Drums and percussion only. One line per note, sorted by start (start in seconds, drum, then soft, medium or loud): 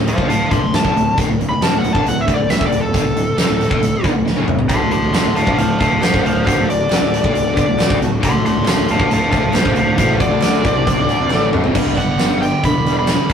0.07 closed hi-hat medium
0.18 kick medium
0.30 closed hi-hat medium
0.51 kick loud
0.51 closed hi-hat medium
0.74 snare medium
0.74 closed hi-hat medium
0.74 tambourine loud
0.85 kick medium
0.97 closed hi-hat medium
1.18 kick loud
1.18 closed hi-hat medium
1.41 closed hi-hat medium
1.62 snare loud
1.62 closed hi-hat medium
1.62 tambourine medium
1.84 closed hi-hat medium
1.95 kick medium
2.06 closed hi-hat medium
2.28 kick loud
2.28 closed hi-hat medium
2.50 snare medium
2.50 closed hi-hat medium
2.50 tambourine medium
2.61 kick loud
2.72 closed hi-hat medium
2.94 kick loud
2.94 closed hi-hat medium
3.16 closed hi-hat medium
3.38 snare medium
3.38 closed hi-hat medium
3.38 tambourine medium
3.61 closed hi-hat medium
3.71 kick loud
3.82 closed hi-hat medium
4.04 kick loud
4.04 closed hi-hat medium
4.27 snare medium
4.37 high tom medium
4.48 mid tom medium
4.59 floor tom medium
4.69 kick loud
4.69 closed hi-hat medium
4.91 closed hi-hat medium
5.14 snare medium
5.14 clap medium
5.14 closed hi-hat medium
5.14 tambourine medium
5.36 closed hi-hat medium
5.47 kick loud
5.58 closed hi-hat medium
5.79 kick loud
5.79 clap medium
5.79 closed hi-hat medium
6.02 snare loud
6.02 clap medium
6.02 closed hi-hat medium
6.02 tambourine loud
6.14 kick loud
6.26 closed hi-hat medium
6.47 kick loud
6.47 closed hi-hat loud
6.70 closed hi-hat medium
6.90 snare loud
6.90 clap medium
6.90 closed hi-hat medium
6.90 tambourine loud
7.14 closed hi-hat medium
7.24 kick loud
7.35 closed hi-hat medium
7.57 kick loud
7.57 clap medium
7.57 closed hi-hat medium
7.78 snare loud
7.78 clap medium
7.78 closed hi-hat medium
7.78 tambourine loud
7.90 kick loud
8.02 closed hi-hat medium
8.23 kick loud
8.23 closed hi-hat loud
8.46 closed hi-hat medium
8.65 snare loud
8.65 clap medium
8.65 closed hi-hat medium
8.65 tambourine loud
8.88 closed hi-hat medium
9.00 kick loud
9.11 closed hi-hat medium
9.32 kick loud
9.32 clap medium
9.32 closed hi-hat medium
9.53 snare loud
9.53 clap medium
9.53 closed hi-hat medium
9.53 tambourine medium
9.65 kick loud
9.76 closed hi-hat medium
9.98 kick loud
9.98 closed hi-hat loud
10.20 kick loud
10.20 closed hi-hat medium
10.41 snare loud
10.41 clap medium
10.41 closed hi-hat medium
10.41 tambourine loud
10.65 kick loud
10.65 closed hi-hat medium
10.87 kick loud
10.87 closed hi-hat loud
11.09 closed hi-hat medium
11.30 snare medium
11.30 clap loud
11.53 mid tom medium
11.64 floor tom medium
11.75 kick loud
11.75 crash loud
11.98 kick medium
11.98 closed hi-hat medium
12.19 snare medium
12.19 clap medium
12.19 closed hi-hat medium
12.19 tambourine medium
12.42 closed hi-hat medium
12.63 kick medium
12.63 closed hi-hat medium
12.86 closed hi-hat medium
13.07 snare loud
13.07 clap medium
13.07 closed hi-hat medium
13.07 tambourine medium
13.29 kick loud
13.29 closed hi-hat medium